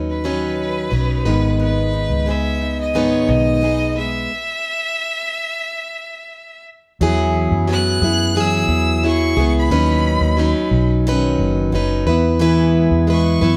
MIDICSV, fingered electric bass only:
0, 0, Header, 1, 2, 480
1, 0, Start_track
1, 0, Key_signature, 4, "major"
1, 0, Tempo, 675676
1, 1138, Time_signature, 4, 2, 24, 8
1, 9638, End_track
2, 0, Start_track
2, 0, Title_t, "Fingered electric bass"
2, 0, Program_c, 0, 33
2, 0, Note_on_c, 0, 39, 76
2, 626, Note_off_c, 0, 39, 0
2, 650, Note_on_c, 0, 35, 77
2, 875, Note_off_c, 0, 35, 0
2, 892, Note_on_c, 0, 32, 94
2, 1467, Note_off_c, 0, 32, 0
2, 1492, Note_on_c, 0, 37, 82
2, 2308, Note_off_c, 0, 37, 0
2, 2335, Note_on_c, 0, 35, 92
2, 3030, Note_off_c, 0, 35, 0
2, 4978, Note_on_c, 0, 40, 99
2, 5311, Note_off_c, 0, 40, 0
2, 5339, Note_on_c, 0, 42, 93
2, 5671, Note_off_c, 0, 42, 0
2, 5697, Note_on_c, 0, 42, 98
2, 6150, Note_off_c, 0, 42, 0
2, 6170, Note_on_c, 0, 40, 103
2, 6627, Note_off_c, 0, 40, 0
2, 6654, Note_on_c, 0, 37, 99
2, 6877, Note_off_c, 0, 37, 0
2, 6896, Note_on_c, 0, 39, 97
2, 7229, Note_off_c, 0, 39, 0
2, 7253, Note_on_c, 0, 39, 93
2, 7477, Note_off_c, 0, 39, 0
2, 7609, Note_on_c, 0, 35, 97
2, 8065, Note_off_c, 0, 35, 0
2, 8091, Note_on_c, 0, 30, 95
2, 8315, Note_off_c, 0, 30, 0
2, 8332, Note_on_c, 0, 30, 86
2, 8555, Note_off_c, 0, 30, 0
2, 8572, Note_on_c, 0, 40, 101
2, 9145, Note_off_c, 0, 40, 0
2, 9173, Note_on_c, 0, 40, 84
2, 9505, Note_off_c, 0, 40, 0
2, 9532, Note_on_c, 0, 42, 93
2, 9638, Note_off_c, 0, 42, 0
2, 9638, End_track
0, 0, End_of_file